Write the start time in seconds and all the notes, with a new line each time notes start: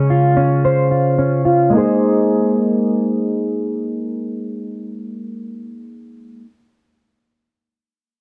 Already playing: C#3 G#3 C#4
0.10 F4
0.37 C#4
0.65 C5
0.91 F4
1.19 C#4
1.45 F4
1.70 G#3 A#3
1.75 D#4 G#4 C5